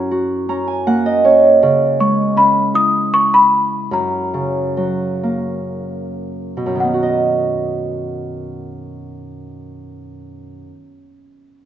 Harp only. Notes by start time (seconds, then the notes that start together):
Already playing: F#2 C#4 E4 G#4
0.11 F#4
0.49 C#4 A#5
0.68 G#5
0.87 A#3 F#5
1.06 D#5
1.24 C#4 C#5
1.63 C#3
2.00 G#3
2.37 C#4
2.74 E4
3.91 F#2
4.34 C#3
4.77 F#3
5.23 A#3
6.57 B2
6.66 F#2
6.75 D#3
6.84 B3
6.94 F#4
7.03 D#5